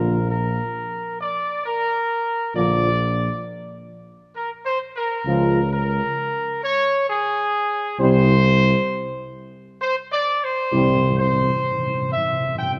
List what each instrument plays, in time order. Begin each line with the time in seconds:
Already playing: tuba A#1, trombone section D3 F3, french horn section A#3 F4, trumpet section A#4
0.29 trumpet section A#4
1.20 trumpet section D5
1.65 trumpet section A#4
2.54 tuba A#1, trombone section D3 F3, french horn section A#3 F4, trumpet section D5
4.35 trumpet section A#4
4.65 trumpet section C5
4.96 trumpet section A#4
5.25 tuba C#2, trombone section C#3 F3, french horn section G#3 F4
5.71 trumpet section A#4
6.64 trumpet section C#5
7.09 trumpet section G#4
7.99 tuba C2, trombone section C3 G3, french horn section C4 E4, trumpet section C5
9.81 trumpet section C5
10.11 trumpet section D5
10.43 trumpet section C5
10.72 tuba C2, trombone section C3 G3, timpani C3, french horn section C4 E4
10.81 timpani C3
10.88 timpani C3
10.96 timpani C3
11.03 timpani C3
11.11 timpani C3
11.18 timpani C3, trumpet section C5
11.26 timpani C3
11.33 timpani C3
11.41 timpani C3
11.48 timpani C3
11.56 timpani C3
11.63 timpani C3
11.71 timpani C3
11.78 timpani C3
11.86 timpani C3
11.93 timpani C3
12.01 timpani C3
12.09 timpani C3, trumpet section E5
12.17 timpani C3
12.25 timpani C3
12.32 timpani C3
12.40 timpani C3
12.47 timpani C3
12.55 timpani C3, trumpet section G5
12.62 timpani C3
12.70 timpani C3